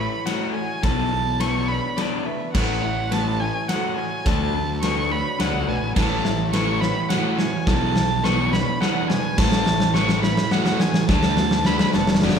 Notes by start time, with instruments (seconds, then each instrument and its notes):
Already playing: overdriven electric guitar A2, clean electric guitar A3 E4 C#5, violin B5
0.00 overdriven electric guitar E3
0.26 overdriven electric guitar A2 E3 A3, clean electric guitar F#4, violin F#5, snare, ride
0.54 overdriven electric guitar A2 E3, clean electric guitar A3 C#5, violin G#5
0.83 fingered electric bass B1, overdriven electric guitar B2 E3 B3, clean electric guitar B2 A4, violin A5, kick, snare, ride
1.12 overdriven electric guitar B2 E3, clean electric guitar E3
1.39 overdriven electric guitar B2 E3 B3, clean electric guitar A3 B4, violin C#6, snare, ride
1.68 overdriven electric guitar B2 E3, clean electric guitar D4 C#5, violin B5
1.96 overdriven electric guitar B2 E3 B3, clean electric guitar A4, violin D5, snare, ride
2.25 overdriven electric guitar B2 E3, clean electric guitar A3 B4, violin E5
2.53 fingered electric bass A1, overdriven electric guitar A2 E3 A3, clean electric guitar A3 C#5, violin F#5, kick, snare, crash
2.83 overdriven electric guitar A2 E3, clean electric guitar E4
3.11 overdriven electric guitar A2 E3 A3, clean electric guitar A3 B4, violin A5, snare, ride
3.40 overdriven electric guitar A2 E3, clean electric guitar E4 C#5, violin G#5
3.68 overdriven electric guitar A2 E3 A3, clean electric guitar F#4, violin F#5, snare, ride
3.96 overdriven electric guitar A2 E3, clean electric guitar A3 C#5, violin G#5
4.25 fingered electric bass D2, clean electric guitar D3 A4, overdriven electric guitar D3 A3 D4, violin A5, kick, snare, ride
4.54 overdriven electric guitar D3 A3, clean electric guitar F#3
4.82 overdriven electric guitar D3 A3 D4, clean electric guitar A3 B4, violin C#6, snare, ride
5.10 overdriven electric guitar D3 A3, clean electric guitar D4 C#5, violin B5
5.39 fingered electric bass D2, overdriven electric guitar D3 A3 D4, clean electric guitar F#4, violin F#5, snare, ride
5.54 fingered electric bass C#2
5.67 fingered electric bass B1, overdriven electric guitar D3 A3, clean electric guitar A3 B4, violin G#5
5.82 fingered electric bass A1
5.95 fingered electric bass A1, overdriven electric guitar A2 E3 A3, clean electric guitar A3 C#5, violin A5, kick, snare, crash
6.24 overdriven electric guitar A2 E3, clean electric guitar E4, snare
6.53 overdriven electric guitar A2 E3 A3, clean electric guitar A3 B4, violin C#6, snare, ride
6.81 overdriven electric guitar A2 E3, clean electric guitar E4 C#5, violin B5, snare
7.09 overdriven electric guitar A2 E3 A3, clean electric guitar F#4, violin F#5, snare, ride
7.37 overdriven electric guitar A2 E3, clean electric guitar A3 C#5, violin G#5, snare
7.67 fingered electric bass B1, distorted electric guitar E2, clean electric guitar B2 A4, overdriven electric guitar B2 E3 B3, violin A5, kick, snare
7.95 distorted electric guitar E2, overdriven electric guitar B2 E3, clean electric guitar E3, snare
8.23 distorted electric guitar E2, overdriven electric guitar B2 E3 B3, clean electric guitar A3 B4, violin C#6, snare
8.52 distorted electric guitar E2, overdriven electric guitar B2 E3, clean electric guitar D4 C#5, violin B5, snare
8.81 distorted electric guitar E2, overdriven electric guitar B2 E3 B3, clean electric guitar A4, violin F#5, snare
9.09 distorted electric guitar E2, overdriven electric guitar B2 E3, clean electric guitar A3 B4, violin G#5, snare
9.37 fingered electric bass A1, overdriven electric guitar A2 E3 A3, clean electric guitar A3 C#5, violin A5, kick, snare, crash
9.52 snare
9.66 overdriven electric guitar A2 E3, clean electric guitar E4, snare
9.80 snare
9.94 overdriven electric guitar A2 E3 A3, clean electric guitar A3 B4, violin C#6, snare
10.09 snare
10.23 overdriven electric guitar A2 E3, clean electric guitar E4 C#5, violin B5, snare
10.37 snare
10.51 overdriven electric guitar A2 E3 A3, clean electric guitar F#4, violin F#5, snare
10.66 snare
10.80 overdriven electric guitar A2 E3, clean electric guitar A3 C#5, violin G#5, snare
10.94 snare
11.08 fingered electric bass D2, clean electric guitar D3 A4, overdriven electric guitar D3 A3 D4, violin A5, kick, snare
11.23 snare
11.37 overdriven electric guitar D3 A3, clean electric guitar F#3, snare
11.51 snare
11.65 overdriven electric guitar D3 A3 D4, clean electric guitar A3 B4, violin B5, snare
11.79 snare
11.93 fingered electric bass E1, overdriven electric guitar D3 A3, clean electric guitar D4 C#5, violin A5, snare
12.07 snare
12.15 snare
12.22 fingered electric bass F#1, overdriven electric guitar D3 A3 D4, clean electric guitar F#4, violin D5, snare
12.29 snare